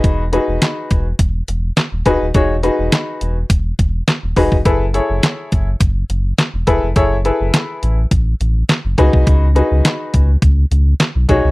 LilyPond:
<<
  \new Staff \with { instrumentName = "Grand piano" } { \time 4/4 \key fis \dorian \tempo 4 = 104 <dis' fis' gis' b'>8 <dis' fis' gis' b'>4 r2 <dis' fis' gis' b'>8 | <dis' fis' gis' cis''>8 <dis' fis' gis' b'>4 r2 <dis' fis' gis' b'>8 | <e' gis' a' b'>8 <e' gis' a' cis''>4 r2 <e' gis' a' b'>8 | <e' gis' a' cis''>8 <e' gis' a' b'>4 r2 <dis' fis' gis' b'>8~ |
<dis' fis' gis' b'>8 <dis' fis' gis' b'>4 r2 <dis' fis' gis' cis''>8 | }
  \new Staff \with { instrumentName = "Sub bass" } { \clef bass \time 4/4 \key fis \dorian e,,8. e,,16 r8 e,,8 e,,8 e,,8 r16 dis,,16 d,,16 dis,,16 | e,,8. e,,16 r8 e,,8 e,,8 e,,8 r16 dis,,16 e,,16 eis,,16 | fis,,8. fis,,16 r8 fis,,8 fis,,8 fis,,8 r16 e,,16 e,,16 eis,,16 | fis,,8. fis,,16 r8 a,,8 a,,8 a,,8 r16 fis,,16 cis,16 bis,,16 |
cis,8. cis,16 r8 cis,8 cis,8 cis,8 r16 b,,16 b,,16 bis,,16 | }
  \new DrumStaff \with { instrumentName = "Drums" } \drummode { \time 4/4 <hh bd>8 hh8 <hc hh sn>8 <hh bd>8 <hh bd>8 hh8 <hc hh sn>8 <hh bd>8 | <hh bd>8 hh8 <hc hh sn>8 hh8 <hh bd>8 <hh bd>8 <hc hh sn>8 <hho bd>16 bd16 | <hh bd>8 hh8 <hc hh sn>8 <hh bd>8 <hh bd>8 hh8 <hc hh sn>8 <hh bd>8 | <hh bd>8 hh8 <hc hh sn>8 hh8 <hh bd>8 hh8 <hc hh sn>8 <hh bd>16 bd16 |
<hh bd>8 hh8 <hc hh sn>8 <hh bd>8 <hh bd>8 hh8 <hc hh sn>8 <hh bd>8 | }
>>